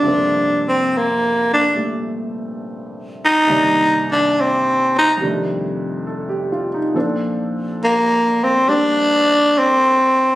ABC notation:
X:1
M:4/4
L:1/16
Q:"Swing" 1/4=70
K:Gm
V:1 name="Tenor saxophone"
D2 C2 B,2 D2 z6 E2- | E2 D2 C2 E2 z8 | [K:Bb] z4 B,2 C2 D4 C4 |]
V:2 name="Grand piano"
z16 | z12 A G F E | [K:Bb] z16 |]
V:3 name="Grand piano" clef=bass
[G,,C,F,B,CA]8 [B,,G,A,]8 | [C,,G,,E,B,d]8 [F,,C,E,G,A,D]8 | [K:Bb] [B,,F,CDA]8 [G,B,D]8 |]